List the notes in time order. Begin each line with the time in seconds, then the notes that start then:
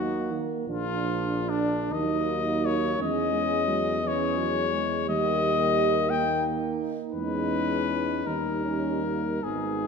Already playing: D#2 F#3 A#3 D#4 F#4
0.31 D#3
0.67 A#1 F3 D4 F4
1.49 D4
1.90 D#2 F#3 A#3 D#4 D#5
2.65 C#5
2.98 E2 G#3 C#4 D#5
3.33 G#3
3.68 F#3
4.03 E3 G#3
4.07 C#5
4.38 F#3
4.73 G#3
5.06 D#2 G3 A#3 G4 D#5
6.10 A#3 D#4 G5
7.12 E2 G#3 C#4 B4
8.25 D#2 G3 D#4 A#4
8.63 C#4
9.02 A#3
9.42 G#1 G#3 B3 D#4 G#4